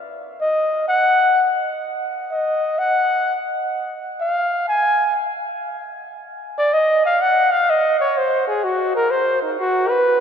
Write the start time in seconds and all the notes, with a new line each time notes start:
0.41 D#5
0.88 F#5
2.31 D#5
2.79 F#5
4.20 F5
4.68 G#5
6.58 D5
6.73 D#5
7.06 F5
7.22 F#5
7.52 F5
7.70 D#5
8.00 C#5
8.18 C5
8.47 G#4
8.64 F#4
8.96 A#4
9.11 C5
9.42 D#4
9.59 F#4
9.89 B4